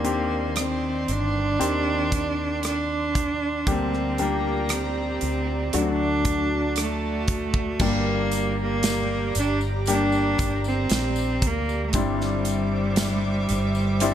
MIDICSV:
0, 0, Header, 1, 6, 480
1, 0, Start_track
1, 0, Key_signature, -2, "minor"
1, 0, Tempo, 1034483
1, 1701, Time_signature, 4, 2, 24, 8
1, 6561, End_track
2, 0, Start_track
2, 0, Title_t, "Analog synth pad"
2, 0, Program_c, 0, 89
2, 0, Note_on_c, 0, 51, 89
2, 0, Note_on_c, 0, 74, 78
2, 0, Note_on_c, 0, 84, 85
2, 733, Note_off_c, 0, 74, 0
2, 739, Note_on_c, 0, 74, 73
2, 1684, Note_off_c, 0, 51, 0
2, 1684, Note_off_c, 0, 84, 0
2, 1690, Note_off_c, 0, 74, 0
2, 1696, Note_on_c, 0, 74, 76
2, 1699, Note_on_c, 0, 67, 83
2, 1700, Note_on_c, 0, 82, 93
2, 2651, Note_off_c, 0, 67, 0
2, 2651, Note_off_c, 0, 82, 0
2, 2654, Note_on_c, 0, 81, 90
2, 2657, Note_on_c, 0, 66, 77
2, 3600, Note_off_c, 0, 74, 0
2, 3608, Note_off_c, 0, 81, 0
2, 3609, Note_off_c, 0, 66, 0
2, 3613, Note_on_c, 0, 82, 89
2, 3615, Note_on_c, 0, 67, 90
2, 3617, Note_on_c, 0, 74, 76
2, 5518, Note_off_c, 0, 82, 0
2, 5519, Note_off_c, 0, 67, 0
2, 5521, Note_off_c, 0, 74, 0
2, 5538, Note_on_c, 0, 86, 88
2, 5539, Note_on_c, 0, 72, 81
2, 5541, Note_on_c, 0, 76, 75
2, 6561, Note_off_c, 0, 72, 0
2, 6561, Note_off_c, 0, 76, 0
2, 6561, Note_off_c, 0, 86, 0
2, 6561, End_track
3, 0, Start_track
3, 0, Title_t, "Cello"
3, 0, Program_c, 1, 42
3, 0, Note_on_c, 1, 58, 84
3, 280, Note_on_c, 1, 60, 83
3, 287, Note_off_c, 1, 58, 0
3, 518, Note_on_c, 1, 62, 108
3, 525, Note_off_c, 1, 60, 0
3, 1230, Note_off_c, 1, 62, 0
3, 1244, Note_on_c, 1, 62, 97
3, 1724, Note_on_c, 1, 60, 91
3, 1731, Note_off_c, 1, 62, 0
3, 1959, Note_on_c, 1, 58, 76
3, 1966, Note_off_c, 1, 60, 0
3, 2195, Note_on_c, 1, 60, 82
3, 2202, Note_off_c, 1, 58, 0
3, 2674, Note_on_c, 1, 62, 87
3, 2681, Note_off_c, 1, 60, 0
3, 2700, Note_on_c, 1, 60, 70
3, 2707, Note_off_c, 1, 62, 0
3, 2739, Note_on_c, 1, 62, 98
3, 2746, Note_off_c, 1, 60, 0
3, 3148, Note_off_c, 1, 62, 0
3, 3160, Note_on_c, 1, 57, 91
3, 3634, Note_on_c, 1, 58, 104
3, 3641, Note_off_c, 1, 57, 0
3, 3987, Note_off_c, 1, 58, 0
3, 3999, Note_on_c, 1, 58, 98
3, 4332, Note_off_c, 1, 58, 0
3, 4357, Note_on_c, 1, 62, 102
3, 4450, Note_off_c, 1, 62, 0
3, 4595, Note_on_c, 1, 62, 107
3, 4929, Note_off_c, 1, 62, 0
3, 4956, Note_on_c, 1, 60, 98
3, 5319, Note_on_c, 1, 58, 94
3, 5326, Note_off_c, 1, 60, 0
3, 5558, Note_on_c, 1, 55, 96
3, 5565, Note_off_c, 1, 58, 0
3, 6561, Note_off_c, 1, 55, 0
3, 6561, End_track
4, 0, Start_track
4, 0, Title_t, "Grand piano"
4, 0, Program_c, 2, 0
4, 0, Control_c, 2, 64, 127
4, 0, Note_on_c, 2, 51, 55
4, 0, Note_on_c, 2, 60, 64
4, 0, Note_on_c, 2, 62, 59
4, 0, Note_on_c, 2, 63, 55
4, 0, Note_on_c, 2, 67, 71
4, 19, Note_off_c, 2, 60, 0
4, 19, Note_off_c, 2, 62, 0
4, 19, Note_on_c, 2, 60, 61
4, 19, Note_on_c, 2, 62, 52
4, 21, Note_off_c, 2, 67, 0
4, 21, Note_on_c, 2, 67, 68
4, 483, Note_off_c, 2, 51, 0
4, 704, Note_off_c, 2, 60, 0
4, 704, Note_off_c, 2, 62, 0
4, 705, Note_off_c, 2, 67, 0
4, 739, Note_on_c, 2, 62, 56
4, 740, Note_on_c, 2, 51, 61
4, 740, Note_on_c, 2, 60, 67
4, 741, Note_on_c, 2, 67, 68
4, 1652, Note_off_c, 2, 51, 0
4, 1652, Note_off_c, 2, 60, 0
4, 1652, Note_off_c, 2, 62, 0
4, 1653, Note_off_c, 2, 67, 0
4, 1703, Note_on_c, 2, 55, 64
4, 1704, Note_on_c, 2, 50, 58
4, 1705, Note_on_c, 2, 58, 60
4, 1705, Note_on_c, 2, 67, 74
4, 1706, Control_c, 2, 64, 0
4, 1706, Note_on_c, 2, 62, 64
4, 1708, Note_off_c, 2, 63, 0
4, 1774, Control_c, 2, 64, 127
4, 1930, Note_off_c, 2, 55, 0
4, 1931, Note_off_c, 2, 58, 0
4, 1931, Note_off_c, 2, 62, 0
4, 1931, Note_off_c, 2, 67, 0
4, 1945, Note_on_c, 2, 55, 57
4, 1946, Note_on_c, 2, 58, 63
4, 1946, Note_on_c, 2, 62, 63
4, 1947, Note_on_c, 2, 67, 68
4, 2404, Note_off_c, 2, 50, 0
4, 2627, Note_off_c, 2, 55, 0
4, 2627, Note_off_c, 2, 58, 0
4, 2627, Note_off_c, 2, 62, 0
4, 2628, Note_off_c, 2, 67, 0
4, 2661, Note_on_c, 2, 54, 62
4, 2661, Note_on_c, 2, 57, 61
4, 2662, Note_on_c, 2, 50, 54
4, 2665, Note_on_c, 2, 62, 59
4, 2666, Note_on_c, 2, 66, 67
4, 2668, Control_c, 2, 64, 0
4, 2751, Control_c, 2, 64, 127
4, 3363, Note_off_c, 2, 50, 0
4, 3573, Note_off_c, 2, 54, 0
4, 3573, Note_off_c, 2, 57, 0
4, 3575, Note_off_c, 2, 62, 0
4, 3575, Note_off_c, 2, 66, 0
4, 3619, Note_on_c, 2, 55, 69
4, 3622, Note_on_c, 2, 58, 64
4, 3623, Note_on_c, 2, 43, 60
4, 3625, Note_on_c, 2, 62, 62
4, 3626, Control_c, 2, 64, 0
4, 3626, Note_on_c, 2, 67, 72
4, 3717, Control_c, 2, 64, 127
4, 4324, Note_off_c, 2, 43, 0
4, 4532, Note_off_c, 2, 55, 0
4, 4534, Note_off_c, 2, 58, 0
4, 4535, Note_off_c, 2, 62, 0
4, 4535, Note_off_c, 2, 67, 0
4, 4581, Note_on_c, 2, 55, 62
4, 4582, Note_on_c, 2, 58, 53
4, 4583, Note_on_c, 2, 62, 54
4, 4585, Note_on_c, 2, 67, 71
4, 5493, Note_off_c, 2, 55, 0
4, 5493, Note_off_c, 2, 58, 0
4, 5494, Note_off_c, 2, 62, 0
4, 5495, Note_off_c, 2, 67, 0
4, 5543, Note_on_c, 2, 55, 68
4, 5543, Note_on_c, 2, 60, 65
4, 5544, Note_on_c, 2, 43, 65
4, 5544, Note_on_c, 2, 64, 74
4, 5546, Control_c, 2, 64, 0
4, 5546, Note_on_c, 2, 62, 70
4, 5626, Control_c, 2, 64, 127
4, 6244, Note_off_c, 2, 43, 0
4, 6454, Note_off_c, 2, 55, 0
4, 6454, Note_off_c, 2, 60, 0
4, 6455, Note_off_c, 2, 62, 0
4, 6455, Note_off_c, 2, 64, 0
4, 6501, Note_on_c, 2, 55, 84
4, 6503, Note_on_c, 2, 60, 65
4, 6504, Note_on_c, 2, 62, 72
4, 6505, Note_on_c, 2, 64, 86
4, 6561, Note_off_c, 2, 55, 0
4, 6561, Note_off_c, 2, 60, 0
4, 6561, Note_off_c, 2, 62, 0
4, 6561, Note_off_c, 2, 64, 0
4, 6561, End_track
5, 0, Start_track
5, 0, Title_t, "Fretless electric bass"
5, 0, Program_c, 3, 35
5, 0, Note_on_c, 3, 39, 90
5, 482, Note_off_c, 3, 39, 0
5, 504, Note_on_c, 3, 31, 81
5, 726, Note_off_c, 3, 31, 0
5, 744, Note_on_c, 3, 39, 86
5, 1684, Note_off_c, 3, 39, 0
5, 1702, Note_on_c, 3, 38, 94
5, 2403, Note_off_c, 3, 38, 0
5, 2423, Note_on_c, 3, 38, 73
5, 2645, Note_off_c, 3, 38, 0
5, 2664, Note_on_c, 3, 38, 96
5, 3604, Note_off_c, 3, 38, 0
5, 3618, Note_on_c, 3, 31, 101
5, 4321, Note_off_c, 3, 31, 0
5, 4341, Note_on_c, 3, 31, 79
5, 4802, Note_off_c, 3, 31, 0
5, 4820, Note_on_c, 3, 31, 85
5, 5044, Note_off_c, 3, 31, 0
5, 5060, Note_on_c, 3, 34, 86
5, 5284, Note_off_c, 3, 34, 0
5, 5301, Note_on_c, 3, 38, 88
5, 5524, Note_off_c, 3, 38, 0
5, 5538, Note_on_c, 3, 31, 101
5, 6241, Note_off_c, 3, 31, 0
5, 6264, Note_on_c, 3, 31, 92
5, 6561, Note_off_c, 3, 31, 0
5, 6561, End_track
6, 0, Start_track
6, 0, Title_t, "Drums"
6, 21, Note_on_c, 9, 42, 58
6, 68, Note_off_c, 9, 42, 0
6, 259, Note_on_c, 9, 42, 79
6, 264, Note_on_c, 9, 37, 103
6, 305, Note_off_c, 9, 42, 0
6, 310, Note_off_c, 9, 37, 0
6, 503, Note_on_c, 9, 42, 56
6, 549, Note_off_c, 9, 42, 0
6, 746, Note_on_c, 9, 42, 74
6, 792, Note_off_c, 9, 42, 0
6, 984, Note_on_c, 9, 36, 85
6, 984, Note_on_c, 9, 42, 69
6, 1030, Note_off_c, 9, 36, 0
6, 1031, Note_off_c, 9, 42, 0
6, 1220, Note_on_c, 9, 42, 79
6, 1229, Note_on_c, 9, 37, 91
6, 1267, Note_off_c, 9, 42, 0
6, 1276, Note_off_c, 9, 37, 0
6, 1463, Note_on_c, 9, 36, 83
6, 1466, Note_on_c, 9, 42, 66
6, 1509, Note_off_c, 9, 36, 0
6, 1512, Note_off_c, 9, 42, 0
6, 1702, Note_on_c, 9, 36, 94
6, 1703, Note_on_c, 9, 42, 80
6, 1749, Note_off_c, 9, 36, 0
6, 1749, Note_off_c, 9, 42, 0
6, 1827, Note_on_c, 9, 37, 29
6, 1873, Note_off_c, 9, 37, 0
6, 1941, Note_on_c, 9, 42, 56
6, 1988, Note_off_c, 9, 42, 0
6, 2177, Note_on_c, 9, 42, 74
6, 2182, Note_on_c, 9, 37, 110
6, 2223, Note_off_c, 9, 42, 0
6, 2228, Note_off_c, 9, 37, 0
6, 2417, Note_on_c, 9, 42, 60
6, 2464, Note_off_c, 9, 42, 0
6, 2659, Note_on_c, 9, 42, 84
6, 2705, Note_off_c, 9, 42, 0
6, 2899, Note_on_c, 9, 42, 70
6, 2901, Note_on_c, 9, 36, 79
6, 2946, Note_off_c, 9, 42, 0
6, 2947, Note_off_c, 9, 36, 0
6, 3136, Note_on_c, 9, 42, 76
6, 3145, Note_on_c, 9, 37, 94
6, 3182, Note_off_c, 9, 42, 0
6, 3191, Note_off_c, 9, 37, 0
6, 3376, Note_on_c, 9, 42, 73
6, 3378, Note_on_c, 9, 36, 94
6, 3423, Note_off_c, 9, 42, 0
6, 3425, Note_off_c, 9, 36, 0
6, 3498, Note_on_c, 9, 36, 89
6, 3544, Note_off_c, 9, 36, 0
6, 3616, Note_on_c, 9, 49, 89
6, 3617, Note_on_c, 9, 54, 46
6, 3618, Note_on_c, 9, 36, 103
6, 3662, Note_off_c, 9, 49, 0
6, 3664, Note_off_c, 9, 54, 0
6, 3665, Note_off_c, 9, 36, 0
6, 3858, Note_on_c, 9, 42, 59
6, 3864, Note_on_c, 9, 54, 44
6, 3905, Note_off_c, 9, 42, 0
6, 3911, Note_off_c, 9, 54, 0
6, 4096, Note_on_c, 9, 42, 80
6, 4101, Note_on_c, 9, 38, 98
6, 4101, Note_on_c, 9, 54, 76
6, 4143, Note_off_c, 9, 42, 0
6, 4147, Note_off_c, 9, 54, 0
6, 4148, Note_off_c, 9, 38, 0
6, 4338, Note_on_c, 9, 42, 66
6, 4343, Note_on_c, 9, 54, 47
6, 4385, Note_off_c, 9, 42, 0
6, 4389, Note_off_c, 9, 54, 0
6, 4458, Note_on_c, 9, 54, 31
6, 4504, Note_off_c, 9, 54, 0
6, 4573, Note_on_c, 9, 54, 38
6, 4581, Note_on_c, 9, 42, 89
6, 4620, Note_off_c, 9, 54, 0
6, 4627, Note_off_c, 9, 42, 0
6, 4697, Note_on_c, 9, 54, 28
6, 4743, Note_off_c, 9, 54, 0
6, 4818, Note_on_c, 9, 54, 45
6, 4821, Note_on_c, 9, 36, 76
6, 4822, Note_on_c, 9, 42, 63
6, 4865, Note_off_c, 9, 54, 0
6, 4868, Note_off_c, 9, 36, 0
6, 4869, Note_off_c, 9, 42, 0
6, 4938, Note_on_c, 9, 54, 32
6, 4985, Note_off_c, 9, 54, 0
6, 5055, Note_on_c, 9, 42, 78
6, 5059, Note_on_c, 9, 54, 73
6, 5065, Note_on_c, 9, 38, 102
6, 5102, Note_off_c, 9, 42, 0
6, 5105, Note_off_c, 9, 54, 0
6, 5111, Note_off_c, 9, 38, 0
6, 5177, Note_on_c, 9, 54, 47
6, 5223, Note_off_c, 9, 54, 0
6, 5299, Note_on_c, 9, 36, 94
6, 5299, Note_on_c, 9, 42, 70
6, 5345, Note_off_c, 9, 42, 0
6, 5346, Note_off_c, 9, 36, 0
6, 5424, Note_on_c, 9, 54, 29
6, 5471, Note_off_c, 9, 54, 0
6, 5535, Note_on_c, 9, 42, 91
6, 5536, Note_on_c, 9, 54, 46
6, 5539, Note_on_c, 9, 36, 101
6, 5582, Note_off_c, 9, 42, 0
6, 5583, Note_off_c, 9, 54, 0
6, 5586, Note_off_c, 9, 36, 0
6, 5665, Note_on_c, 9, 38, 30
6, 5711, Note_off_c, 9, 38, 0
6, 5777, Note_on_c, 9, 42, 61
6, 5781, Note_on_c, 9, 54, 42
6, 5823, Note_off_c, 9, 42, 0
6, 5827, Note_off_c, 9, 54, 0
6, 6014, Note_on_c, 9, 42, 86
6, 6019, Note_on_c, 9, 38, 108
6, 6020, Note_on_c, 9, 54, 78
6, 6061, Note_off_c, 9, 42, 0
6, 6066, Note_off_c, 9, 38, 0
6, 6066, Note_off_c, 9, 54, 0
6, 6258, Note_on_c, 9, 42, 58
6, 6261, Note_on_c, 9, 54, 45
6, 6305, Note_off_c, 9, 42, 0
6, 6307, Note_off_c, 9, 54, 0
6, 6379, Note_on_c, 9, 54, 32
6, 6425, Note_off_c, 9, 54, 0
6, 6498, Note_on_c, 9, 42, 87
6, 6498, Note_on_c, 9, 54, 33
6, 6544, Note_off_c, 9, 42, 0
6, 6544, Note_off_c, 9, 54, 0
6, 6561, End_track
0, 0, End_of_file